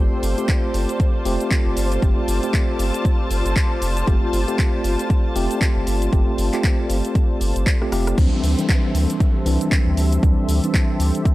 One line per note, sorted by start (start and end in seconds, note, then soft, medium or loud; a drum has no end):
0.00 0.34 A3 medium
0.00 0.34 C4 medium
0.00 0.34 F4 medium
0.00 8.14 F4 medium
0.00 8.18 F4 medium
0.00 0.34 G4 medium
0.00 8.14 A4 medium
0.00 8.14 C5 medium
0.00 8.18 C5 medium
0.00 8.14 D5 medium
0.00 1.30 G5 medium
0.23 0.35 G1 medium
0.23 open hi-hat loud
0.23 shaker medium
0.38 1.23 A3 medium
0.38 1.23 C4 medium
0.38 1.23 F4 medium
0.38 1.23 G4 medium
0.38 closed hi-hat medium
0.38 shaker soft
0.48 kick loud
0.48 clap loud
0.48 closed hi-hat soft
0.48 shaker soft
0.57 8.18 A5 medium
0.74 0.86 G1 medium
0.74 open hi-hat loud
0.74 shaker medium
0.89 closed hi-hat medium
0.89 shaker soft
1.00 kick loud
1.00 closed hi-hat medium
1.00 shaker soft
1.25 1.37 F1 medium
1.25 2.00 A3 medium
1.25 2.00 C4 medium
1.25 2.00 F4 medium
1.25 2.00 G4 loud
1.25 open hi-hat loud
1.25 shaker medium
1.40 closed hi-hat medium
1.40 shaker soft
1.51 kick loud
1.51 clap loud
1.51 closed hi-hat soft
1.51 shaker soft
1.66 1.74 G1 loud
1.77 1.98 G1 medium
1.77 open hi-hat loud
1.77 shaker medium
1.92 closed hi-hat medium
1.92 shaker soft
2.02 2.14 G1 loud
2.02 2.39 A3 medium
2.02 2.39 C4 medium
2.02 2.39 F4 medium
2.02 2.40 G4 medium
2.02 kick loud
2.02 closed hi-hat soft
2.02 shaker soft
2.28 2.40 G1 medium
2.28 open hi-hat loud
2.28 shaker medium
2.43 4.05 A3 medium
2.43 4.05 C4 medium
2.43 4.05 F4 medium
2.43 4.05 G4 medium
2.43 closed hi-hat medium
2.43 shaker soft
2.54 kick loud
2.54 clap loud
2.54 closed hi-hat medium
2.54 shaker soft
2.79 2.91 G1 medium
2.79 open hi-hat loud
2.79 shaker medium
2.94 closed hi-hat medium
2.94 shaker soft
3.05 kick loud
3.05 closed hi-hat medium
3.05 shaker soft
3.30 3.42 G1 loud
3.30 open hi-hat loud
3.30 shaker medium
3.45 3.54 G1 loud
3.45 closed hi-hat medium
3.45 shaker soft
3.56 kick loud
3.56 clap loud
3.56 closed hi-hat medium
3.56 shaker soft
3.82 4.03 F1 loud
3.82 open hi-hat loud
3.82 shaker medium
3.97 closed hi-hat medium
3.97 shaker soft
4.07 4.19 G1 loud
4.07 4.44 A3 medium
4.07 4.45 C4 medium
4.07 4.45 F4 medium
4.07 4.45 G4 medium
4.07 kick loud
4.07 closed hi-hat medium
4.07 shaker soft
4.33 4.45 G1 medium
4.33 open hi-hat medium
4.33 shaker medium
4.48 5.33 A3 medium
4.48 5.33 C4 medium
4.48 5.33 F4 medium
4.48 5.33 G4 medium
4.48 closed hi-hat medium
4.48 shaker soft
4.59 kick loud
4.59 clap loud
4.59 closed hi-hat medium
4.59 shaker soft
4.84 4.96 G1 medium
4.84 open hi-hat loud
4.84 shaker medium
4.99 closed hi-hat medium
4.99 shaker soft
5.10 kick loud
5.10 closed hi-hat medium
5.10 shaker soft
5.35 5.47 F1 medium
5.35 6.10 A3 medium
5.35 6.10 C4 medium
5.35 6.10 F4 medium
5.35 6.10 G4 loud
5.35 open hi-hat medium
5.35 shaker medium
5.51 closed hi-hat medium
5.51 shaker soft
5.61 kick loud
5.61 clap loud
5.61 closed hi-hat medium
5.61 shaker soft
5.76 5.85 G1 loud
5.87 6.08 G1 medium
5.87 open hi-hat loud
5.87 shaker medium
6.02 closed hi-hat medium
6.02 shaker soft
6.12 6.24 G1 loud
6.12 6.50 A3 medium
6.12 6.50 C4 medium
6.12 6.50 F4 medium
6.12 6.50 G4 medium
6.12 kick loud
6.12 closed hi-hat medium
6.12 shaker soft
6.38 6.50 G1 medium
6.38 open hi-hat loud
6.38 shaker medium
6.53 7.78 A3 medium
6.53 7.78 C4 medium
6.53 7.79 F4 medium
6.53 7.79 G4 medium
6.53 clap soft
6.53 closed hi-hat medium
6.53 shaker soft
6.64 kick loud
6.64 clap loud
6.64 closed hi-hat medium
6.64 shaker soft
6.90 7.01 G1 medium
6.90 open hi-hat loud
6.90 shaker medium
7.05 closed hi-hat medium
7.05 shaker soft
7.15 kick loud
7.15 closed hi-hat medium
7.15 shaker soft
7.41 7.53 G1 loud
7.41 open hi-hat loud
7.41 shaker medium
7.56 7.64 G1 loud
7.56 closed hi-hat medium
7.56 shaker soft
7.66 kick loud
7.66 clap loud
7.66 closed hi-hat medium
7.66 shaker soft
7.81 7.90 A3 medium
7.81 7.90 C4 medium
7.81 7.90 F4 medium
7.81 7.90 G4 medium
7.81 cross-stick medium
7.92 8.13 F1 loud
7.92 8.15 A3 medium
7.92 8.15 C4 medium
7.92 8.15 F4 medium
7.92 8.15 G4 medium
7.92 cross-stick medium
7.92 open hi-hat loud
7.92 shaker medium
8.07 cross-stick medium
8.07 closed hi-hat medium
8.07 shaker soft
8.18 8.29 D2 loud
8.18 8.55 E3 medium
8.18 8.55 G3 medium
8.18 8.55 C4 medium
8.18 8.55 D4 medium
8.18 11.35 G4 medium
8.18 11.35 A4 medium
8.18 11.35 C5 medium
8.18 11.35 E5 medium
8.18 kick loud
8.18 closed hi-hat medium
8.18 crash loud
8.18 downlifter medium
8.18 shaker soft
8.43 8.55 D2 medium
8.43 open hi-hat loud
8.43 shaker medium
8.58 9.43 E3 medium
8.58 9.43 G3 medium
8.58 9.43 C4 medium
8.58 9.44 D4 medium
8.58 closed hi-hat medium
8.58 shaker soft
8.69 kick loud
8.69 clap loud
8.69 closed hi-hat medium
8.69 shaker soft
8.95 9.06 D2 medium
8.95 open hi-hat loud
8.95 shaker medium
9.10 closed hi-hat medium
9.10 shaker soft
9.20 kick loud
9.20 closed hi-hat medium
9.20 shaker soft
9.46 9.58 C2 medium
9.46 10.20 E3 medium
9.46 10.20 G3 medium
9.46 10.20 C4 medium
9.46 10.20 D4 loud
9.46 open hi-hat loud
9.46 shaker medium
9.61 closed hi-hat medium
9.61 shaker soft
9.72 kick loud
9.72 clap loud
9.72 closed hi-hat medium
9.72 shaker soft
9.87 9.95 D2 loud
9.97 10.18 D2 medium
9.97 open hi-hat loud
9.97 shaker medium
10.12 closed hi-hat medium
10.12 shaker soft
10.23 10.35 D2 loud
10.23 10.60 E3 medium
10.23 10.60 G3 medium
10.23 10.60 C4 medium
10.23 10.60 D4 medium
10.23 kick loud
10.23 closed hi-hat medium
10.23 shaker soft
10.48 10.60 D2 medium
10.48 open hi-hat loud
10.48 shaker medium
10.63 11.35 E3 medium
10.63 11.35 G3 medium
10.63 11.35 C4 medium
10.63 11.35 D4 medium
10.63 closed hi-hat medium
10.63 shaker soft
10.74 kick loud
10.74 clap loud
10.74 closed hi-hat medium
10.74 shaker soft
11.00 11.12 D2 medium
11.00 open hi-hat loud
11.00 shaker medium
11.15 closed hi-hat medium
11.15 shaker soft
11.25 kick loud
11.25 closed hi-hat medium
11.25 shaker soft